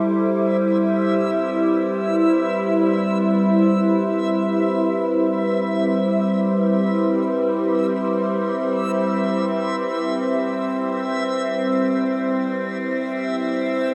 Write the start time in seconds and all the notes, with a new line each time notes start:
Already playing: G3 C4 E4 A4 C5 E5
0.42 B4